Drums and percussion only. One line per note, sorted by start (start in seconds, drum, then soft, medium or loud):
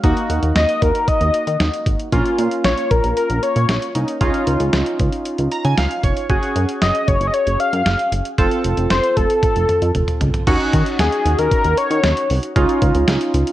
0.04 kick loud
0.04 closed hi-hat medium
0.17 closed hi-hat soft
0.30 closed hi-hat medium
0.43 closed hi-hat medium
0.56 snare loud
0.56 closed hi-hat medium
0.69 closed hi-hat soft
0.82 kick medium
0.82 closed hi-hat medium
0.95 closed hi-hat medium
1.08 kick loud
1.08 closed hi-hat medium
1.21 closed hi-hat medium
1.34 closed hi-hat medium
1.47 closed hi-hat medium
1.60 snare loud
1.60 closed hi-hat medium
1.73 closed hi-hat soft
1.86 kick medium
1.86 closed hi-hat medium
1.99 closed hi-hat medium
2.12 kick loud
2.12 closed hi-hat medium
2.26 closed hi-hat soft
2.38 closed hi-hat medium
2.51 closed hi-hat soft
2.64 snare loud
2.64 closed hi-hat medium
2.77 closed hi-hat soft
2.91 kick medium
2.91 closed hi-hat medium
3.04 closed hi-hat medium
3.17 closed hi-hat medium
3.30 closed hi-hat medium
3.43 closed hi-hat medium
3.56 closed hi-hat soft
3.69 snare loud
3.69 closed hi-hat medium
3.82 closed hi-hat soft
3.95 closed hi-hat medium
4.08 closed hi-hat medium
4.21 kick loud
4.21 closed hi-hat medium
4.34 closed hi-hat soft
4.47 closed hi-hat medium
4.60 closed hi-hat medium
4.73 snare loud
4.73 closed hi-hat medium
4.86 closed hi-hat soft
4.99 kick medium
4.99 closed hi-hat medium
5.12 closed hi-hat medium
5.25 closed hi-hat medium
5.38 closed hi-hat medium
5.51 closed hi-hat medium
5.64 closed hi-hat medium
5.77 snare loud
5.77 closed hi-hat medium
5.91 closed hi-hat soft
6.03 kick medium
6.03 closed hi-hat medium
6.17 closed hi-hat medium
6.30 kick loud
6.30 closed hi-hat medium
6.43 closed hi-hat soft
6.56 closed hi-hat medium
6.69 closed hi-hat medium
6.82 snare loud
6.82 closed hi-hat medium
6.95 closed hi-hat soft
7.08 kick medium
7.08 closed hi-hat medium
7.21 closed hi-hat medium
7.34 closed hi-hat medium
7.47 closed hi-hat medium
7.60 closed hi-hat medium
7.73 closed hi-hat soft
7.86 snare loud
7.86 closed hi-hat medium
7.99 closed hi-hat soft
8.12 closed hi-hat medium
8.25 closed hi-hat medium
8.38 kick loud
8.38 closed hi-hat medium
8.52 closed hi-hat soft
8.65 closed hi-hat medium
8.77 closed hi-hat medium
8.90 snare loud
8.90 closed hi-hat medium
9.04 closed hi-hat soft
9.17 kick medium
9.17 closed hi-hat medium
9.30 closed hi-hat medium
9.43 kick loud
9.43 closed hi-hat medium
9.43 high tom medium
9.56 closed hi-hat medium
9.69 closed hi-hat medium
9.69 mid tom medium
9.82 closed hi-hat medium
9.95 closed hi-hat medium
9.95 mid tom medium
10.08 closed hi-hat soft
10.08 mid tom medium
10.21 closed hi-hat medium
10.21 floor tom loud
10.34 closed hi-hat medium
10.34 floor tom medium
10.47 kick loud
10.47 closed hi-hat medium
10.47 crash medium
10.60 closed hi-hat soft
10.73 kick medium
10.73 closed hi-hat medium
10.86 closed hi-hat medium
10.99 snare loud
10.99 closed hi-hat medium
11.12 closed hi-hat soft
11.26 closed hi-hat medium
11.38 closed hi-hat medium
11.51 kick loud
11.51 closed hi-hat medium
11.64 closed hi-hat medium
11.77 closed hi-hat medium
11.91 closed hi-hat medium
12.04 snare loud
12.04 closed hi-hat medium
12.17 closed hi-hat soft
12.30 open hi-hat medium
12.43 closed hi-hat medium
12.56 kick loud
12.56 closed hi-hat medium
12.69 closed hi-hat soft
12.82 kick medium
12.82 closed hi-hat medium
12.95 closed hi-hat medium
13.08 snare loud
13.08 closed hi-hat medium
13.21 closed hi-hat soft
13.34 closed hi-hat medium
13.47 closed hi-hat medium